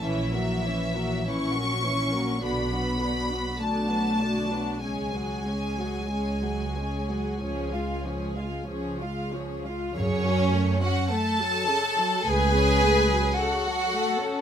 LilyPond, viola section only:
\new Staff \with { instrumentName = "Viola section" } { \clef bass \time 4/4 \key fis \minor \tempo 4 = 51 << { cis'16 ais16 cis'16 ais16 cis'16 ais16 cis'16 ais16 fis'16 d'16 fis'16 d'16 fis'16 d'16 fis'16 d'16 | cis'16 gis16 cis'16 gis16 cis'16 gis16 cis'16 gis16 cis'16 eis'16 cis'16 eis'16 cis'16 eis'16 cis'16 eis'16 | cis'1 | } \\ { e16 fis16 e16 fis16 e16 fis16 e16 fis16 d16 fis16 d16 fis16 d16 fis16 d16 fis16 | gis16 fis16 gis16 fis16 gis16 fis16 gis16 fis16 eis16 gis16 eis16 gis16 eis16 gis16 eis16 gis16 | cis16 fis16 a16 cis'16 a16 fis16 cis16 fis16 a16 cis'16 a16 fis16 cis16 fis16 a16 cis'16 | } >> }